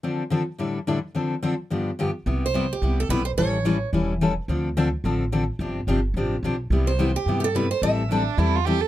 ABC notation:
X:1
M:4/4
L:1/16
Q:"Swing" 1/4=216
K:C
V:1 name="Steel-string acoustic guitar"
z16 | z16 | z2 c4 G4 A2 B2 c2 | ^c8 z8 |
z16 | z16 | z2 c4 G3- G/2 G/2 A2 B2 c2 | e8 z8 |]
V:2 name="Violin"
z16 | z16 | z16 | z16 |
z16 | z16 | z16 | z4 D4 E2 F2 G2 A2 |]
V:3 name="Steel-string acoustic guitar"
[D,F,CDA]2 z2 [D,F,CDA]2 z2 [A,,D,G,DEA]2 z2 [A,,D,G,DEA]2 z2 | [D,F,CDA]2 z2 [D,F,CDA]2 z2 [G,,D,F,B,DG]2 z2 [G,,D,F,B,DG]2 z2 | [C,G,B,EG]2 z2 [C,G,B,EG]2 z2 [C,G,B,EG]2 z2 [C,G,B,EG]2 z2 | [E,G,^CEA]2 z2 [E,G,CEA]2 z2 [E,G,CEA]2 z2 [E,G,CEA]2 z2 |
[D,F,CDA]2 z2 [D,F,CDA]2 z2 [D,F,CDA]2 z2 [D,F,CDA]2 z2 | [C,F,CDG]2 z2 [C,F,CDG]2 z2 [C,F,CDG]2 z2 [C,F,CDG]2 z2 | [C,G,B,EG]2 z2 [C,G,B,EG]2 z2 [C,G,B,EG]2 z2 [C,G,B,EG]2 z2 | [E,G,CEA]2 z2 [E,G,CEA]2 z2 [E,G,CEA]2 z2 [E,G,CEA]2 z2 |]
V:4 name="Upright bass" clef=bass
z16 | z16 | C,,8 C,,4 B,,,4 | A,,,8 E,,,8 |
D,,8 A,,,8 | G,,,4 G,,,4 A,,,4 B,,,4 | C,,8 G,,8 | A,,,8 E,,8 |]